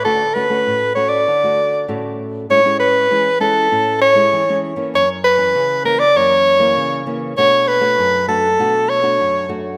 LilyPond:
<<
  \new Staff \with { instrumentName = "Soprano saxophone" } { \time 4/4 \key d \major \tempo 4 = 98 a'8 b'4 cis''16 d''4~ d''16 r4 | \key a \major cis''8 b'4 a'4 cis''4 r8 | cis''8 b'4 ais'16 d''16 cis''4. r8 | cis''8 b'4 a'4 cis''4 r8 | }
  \new Staff \with { instrumentName = "Nylon-string guitar" } { \time 4/4 \key d \major << { <a cis' fis'>16 r16 <a cis' fis'>16 <a cis' fis'>8. <a cis' fis'>8 r16 <a fis'>8. <a cis' fis'>4 | \key a \major <gis cis' e'>16 <gis cis' e'>8. <gis cis' e'>16 r16 <gis cis' e'>8 <cis' e'>8. <gis cis' e'>8 <gis cis' e'>8 <e bes cis'>16~ | <e bes cis'>16 r8 <e cis'>8. <e ais cis'>16 r16 <e ais cis'>8. <e ais cis'>8. <e ais cis'>8 | <a d' fis'>8. <a d' fis'>8. <a d' fis'>16 r16 <a d' fis'>8. <a d' fis'>8. <a d' fis'>8 | } \\ { d4 a,4 d4 a,4 | a,4 e4 a,4 e4 | fis,4 cis4 fis,4 cis4 | b,4 fis,4 b,4 fis,4 | } >> }
>>